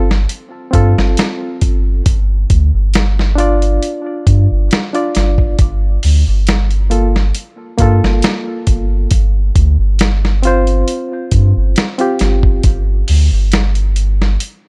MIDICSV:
0, 0, Header, 1, 4, 480
1, 0, Start_track
1, 0, Key_signature, -2, "minor"
1, 0, Tempo, 882353
1, 1120, Time_signature, 4, 2, 24, 8
1, 7986, End_track
2, 0, Start_track
2, 0, Title_t, "Reed electric piano"
2, 0, Program_c, 0, 4
2, 386, Note_on_c, 0, 60, 92
2, 396, Note_on_c, 0, 65, 92
2, 407, Note_on_c, 0, 69, 102
2, 1099, Note_off_c, 0, 60, 0
2, 1105, Note_off_c, 0, 65, 0
2, 1110, Note_off_c, 0, 69, 0
2, 1825, Note_on_c, 0, 62, 96
2, 1838, Note_on_c, 0, 65, 95
2, 1850, Note_on_c, 0, 74, 110
2, 2649, Note_off_c, 0, 62, 0
2, 2656, Note_off_c, 0, 65, 0
2, 2662, Note_off_c, 0, 74, 0
2, 2683, Note_on_c, 0, 62, 79
2, 2689, Note_on_c, 0, 65, 79
2, 2695, Note_on_c, 0, 74, 93
2, 3025, Note_off_c, 0, 62, 0
2, 3028, Note_off_c, 0, 65, 0
2, 3030, Note_off_c, 0, 74, 0
2, 3753, Note_on_c, 0, 58, 77
2, 3757, Note_on_c, 0, 65, 71
2, 3763, Note_on_c, 0, 69, 81
2, 3890, Note_off_c, 0, 58, 0
2, 3892, Note_off_c, 0, 65, 0
2, 3895, Note_off_c, 0, 69, 0
2, 4231, Note_on_c, 0, 58, 100
2, 4244, Note_on_c, 0, 65, 87
2, 4253, Note_on_c, 0, 69, 100
2, 4942, Note_off_c, 0, 58, 0
2, 4949, Note_off_c, 0, 65, 0
2, 4953, Note_off_c, 0, 69, 0
2, 5671, Note_on_c, 0, 60, 97
2, 5686, Note_on_c, 0, 65, 93
2, 5696, Note_on_c, 0, 72, 112
2, 6492, Note_off_c, 0, 60, 0
2, 6500, Note_off_c, 0, 65, 0
2, 6505, Note_off_c, 0, 72, 0
2, 6519, Note_on_c, 0, 60, 87
2, 6527, Note_on_c, 0, 65, 79
2, 6533, Note_on_c, 0, 67, 98
2, 6862, Note_off_c, 0, 60, 0
2, 6866, Note_off_c, 0, 65, 0
2, 6870, Note_off_c, 0, 67, 0
2, 7986, End_track
3, 0, Start_track
3, 0, Title_t, "Sub bass"
3, 0, Program_c, 1, 38
3, 0, Note_on_c, 1, 31, 103
3, 142, Note_off_c, 1, 31, 0
3, 402, Note_on_c, 1, 43, 85
3, 513, Note_off_c, 1, 43, 0
3, 531, Note_on_c, 1, 31, 82
3, 628, Note_off_c, 1, 31, 0
3, 883, Note_on_c, 1, 31, 81
3, 1094, Note_off_c, 1, 31, 0
3, 1123, Note_on_c, 1, 31, 99
3, 1334, Note_off_c, 1, 31, 0
3, 1363, Note_on_c, 1, 38, 84
3, 1473, Note_off_c, 1, 38, 0
3, 1490, Note_on_c, 1, 31, 100
3, 2060, Note_off_c, 1, 31, 0
3, 2321, Note_on_c, 1, 43, 88
3, 2432, Note_off_c, 1, 43, 0
3, 2454, Note_on_c, 1, 31, 90
3, 2550, Note_off_c, 1, 31, 0
3, 2806, Note_on_c, 1, 31, 82
3, 3016, Note_off_c, 1, 31, 0
3, 3040, Note_on_c, 1, 31, 104
3, 3253, Note_off_c, 1, 31, 0
3, 3286, Note_on_c, 1, 38, 87
3, 3395, Note_off_c, 1, 38, 0
3, 3414, Note_on_c, 1, 31, 93
3, 3982, Note_off_c, 1, 31, 0
3, 4240, Note_on_c, 1, 43, 84
3, 4352, Note_off_c, 1, 43, 0
3, 4369, Note_on_c, 1, 31, 86
3, 4467, Note_off_c, 1, 31, 0
3, 4717, Note_on_c, 1, 31, 83
3, 4932, Note_off_c, 1, 31, 0
3, 4961, Note_on_c, 1, 31, 101
3, 5174, Note_off_c, 1, 31, 0
3, 5202, Note_on_c, 1, 38, 89
3, 5313, Note_off_c, 1, 38, 0
3, 5323, Note_on_c, 1, 31, 104
3, 5896, Note_off_c, 1, 31, 0
3, 6159, Note_on_c, 1, 43, 83
3, 6272, Note_off_c, 1, 43, 0
3, 6290, Note_on_c, 1, 31, 94
3, 6388, Note_off_c, 1, 31, 0
3, 6639, Note_on_c, 1, 31, 84
3, 6852, Note_off_c, 1, 31, 0
3, 6875, Note_on_c, 1, 31, 100
3, 7090, Note_off_c, 1, 31, 0
3, 7120, Note_on_c, 1, 38, 90
3, 7232, Note_off_c, 1, 38, 0
3, 7245, Note_on_c, 1, 31, 96
3, 7817, Note_off_c, 1, 31, 0
3, 7986, End_track
4, 0, Start_track
4, 0, Title_t, "Drums"
4, 60, Note_on_c, 9, 38, 55
4, 114, Note_off_c, 9, 38, 0
4, 160, Note_on_c, 9, 42, 91
4, 214, Note_off_c, 9, 42, 0
4, 400, Note_on_c, 9, 36, 93
4, 400, Note_on_c, 9, 42, 66
4, 454, Note_off_c, 9, 42, 0
4, 455, Note_off_c, 9, 36, 0
4, 536, Note_on_c, 9, 38, 57
4, 590, Note_off_c, 9, 38, 0
4, 638, Note_on_c, 9, 42, 91
4, 648, Note_on_c, 9, 38, 111
4, 693, Note_off_c, 9, 42, 0
4, 702, Note_off_c, 9, 38, 0
4, 878, Note_on_c, 9, 42, 69
4, 880, Note_on_c, 9, 36, 92
4, 933, Note_off_c, 9, 42, 0
4, 935, Note_off_c, 9, 36, 0
4, 1120, Note_on_c, 9, 36, 121
4, 1120, Note_on_c, 9, 42, 96
4, 1174, Note_off_c, 9, 42, 0
4, 1175, Note_off_c, 9, 36, 0
4, 1360, Note_on_c, 9, 36, 102
4, 1360, Note_on_c, 9, 42, 72
4, 1414, Note_off_c, 9, 42, 0
4, 1415, Note_off_c, 9, 36, 0
4, 1597, Note_on_c, 9, 42, 93
4, 1607, Note_on_c, 9, 38, 115
4, 1652, Note_off_c, 9, 42, 0
4, 1661, Note_off_c, 9, 38, 0
4, 1737, Note_on_c, 9, 38, 42
4, 1792, Note_off_c, 9, 38, 0
4, 1841, Note_on_c, 9, 42, 65
4, 1896, Note_off_c, 9, 42, 0
4, 1970, Note_on_c, 9, 42, 44
4, 2025, Note_off_c, 9, 42, 0
4, 2081, Note_on_c, 9, 42, 91
4, 2135, Note_off_c, 9, 42, 0
4, 2321, Note_on_c, 9, 36, 96
4, 2322, Note_on_c, 9, 42, 69
4, 2375, Note_off_c, 9, 36, 0
4, 2376, Note_off_c, 9, 42, 0
4, 2562, Note_on_c, 9, 42, 85
4, 2572, Note_on_c, 9, 38, 121
4, 2616, Note_off_c, 9, 42, 0
4, 2626, Note_off_c, 9, 38, 0
4, 2690, Note_on_c, 9, 42, 45
4, 2745, Note_off_c, 9, 42, 0
4, 2800, Note_on_c, 9, 42, 72
4, 2810, Note_on_c, 9, 38, 58
4, 2854, Note_off_c, 9, 42, 0
4, 2864, Note_off_c, 9, 38, 0
4, 2927, Note_on_c, 9, 36, 94
4, 2981, Note_off_c, 9, 36, 0
4, 3038, Note_on_c, 9, 42, 87
4, 3040, Note_on_c, 9, 36, 116
4, 3093, Note_off_c, 9, 42, 0
4, 3094, Note_off_c, 9, 36, 0
4, 3280, Note_on_c, 9, 46, 89
4, 3334, Note_off_c, 9, 46, 0
4, 3519, Note_on_c, 9, 42, 87
4, 3528, Note_on_c, 9, 38, 119
4, 3573, Note_off_c, 9, 42, 0
4, 3583, Note_off_c, 9, 38, 0
4, 3648, Note_on_c, 9, 42, 40
4, 3702, Note_off_c, 9, 42, 0
4, 3759, Note_on_c, 9, 42, 71
4, 3814, Note_off_c, 9, 42, 0
4, 3895, Note_on_c, 9, 38, 48
4, 3949, Note_off_c, 9, 38, 0
4, 3996, Note_on_c, 9, 42, 96
4, 4050, Note_off_c, 9, 42, 0
4, 4235, Note_on_c, 9, 42, 69
4, 4238, Note_on_c, 9, 36, 95
4, 4289, Note_off_c, 9, 42, 0
4, 4293, Note_off_c, 9, 36, 0
4, 4375, Note_on_c, 9, 38, 57
4, 4430, Note_off_c, 9, 38, 0
4, 4474, Note_on_c, 9, 42, 94
4, 4484, Note_on_c, 9, 38, 119
4, 4528, Note_off_c, 9, 42, 0
4, 4538, Note_off_c, 9, 38, 0
4, 4715, Note_on_c, 9, 42, 73
4, 4717, Note_on_c, 9, 36, 95
4, 4770, Note_off_c, 9, 42, 0
4, 4772, Note_off_c, 9, 36, 0
4, 4954, Note_on_c, 9, 42, 96
4, 4958, Note_on_c, 9, 36, 116
4, 5008, Note_off_c, 9, 42, 0
4, 5012, Note_off_c, 9, 36, 0
4, 5198, Note_on_c, 9, 36, 102
4, 5199, Note_on_c, 9, 42, 70
4, 5253, Note_off_c, 9, 36, 0
4, 5253, Note_off_c, 9, 42, 0
4, 5435, Note_on_c, 9, 42, 88
4, 5445, Note_on_c, 9, 38, 117
4, 5489, Note_off_c, 9, 42, 0
4, 5499, Note_off_c, 9, 38, 0
4, 5575, Note_on_c, 9, 38, 44
4, 5629, Note_off_c, 9, 38, 0
4, 5676, Note_on_c, 9, 42, 71
4, 5731, Note_off_c, 9, 42, 0
4, 5805, Note_on_c, 9, 42, 45
4, 5860, Note_off_c, 9, 42, 0
4, 5917, Note_on_c, 9, 42, 89
4, 5971, Note_off_c, 9, 42, 0
4, 6155, Note_on_c, 9, 42, 69
4, 6157, Note_on_c, 9, 36, 94
4, 6209, Note_off_c, 9, 42, 0
4, 6211, Note_off_c, 9, 36, 0
4, 6397, Note_on_c, 9, 42, 92
4, 6407, Note_on_c, 9, 38, 117
4, 6452, Note_off_c, 9, 42, 0
4, 6461, Note_off_c, 9, 38, 0
4, 6520, Note_on_c, 9, 42, 49
4, 6575, Note_off_c, 9, 42, 0
4, 6632, Note_on_c, 9, 42, 70
4, 6642, Note_on_c, 9, 38, 60
4, 6687, Note_off_c, 9, 42, 0
4, 6697, Note_off_c, 9, 38, 0
4, 6763, Note_on_c, 9, 36, 98
4, 6817, Note_off_c, 9, 36, 0
4, 6873, Note_on_c, 9, 42, 97
4, 6875, Note_on_c, 9, 36, 118
4, 6927, Note_off_c, 9, 42, 0
4, 6930, Note_off_c, 9, 36, 0
4, 7114, Note_on_c, 9, 46, 87
4, 7169, Note_off_c, 9, 46, 0
4, 7353, Note_on_c, 9, 42, 96
4, 7363, Note_on_c, 9, 38, 121
4, 7407, Note_off_c, 9, 42, 0
4, 7417, Note_off_c, 9, 38, 0
4, 7482, Note_on_c, 9, 42, 43
4, 7536, Note_off_c, 9, 42, 0
4, 7595, Note_on_c, 9, 42, 71
4, 7649, Note_off_c, 9, 42, 0
4, 7734, Note_on_c, 9, 38, 51
4, 7788, Note_off_c, 9, 38, 0
4, 7835, Note_on_c, 9, 42, 96
4, 7890, Note_off_c, 9, 42, 0
4, 7986, End_track
0, 0, End_of_file